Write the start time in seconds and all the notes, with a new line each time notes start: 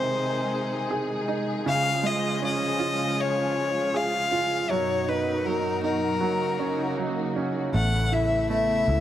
Already playing: C3 D#3 G#3 C4 D#4 G#4 C5
0.91 G#4
1.28 D#4
1.66 C#3 F3 F4 F5
2.03 G#3 D#5
2.42 C#4 D#5
2.80 F4
3.20 C#5
3.94 G#4 F5
4.32 F4
4.70 F#2 B2 D#3 F#3 D#4 F#4 C#5
5.08 D#4 B4
5.46 F#3 A#4
5.83 D#4 A#4
6.20 C#3 F#3 A#3 D#4
6.59 C#4
6.98 F#3
7.36 C#4
7.74 A1 E3 A3 B3 E4 F#5
8.12 E4 E5
8.50 A3 E5
8.88 C#2 E4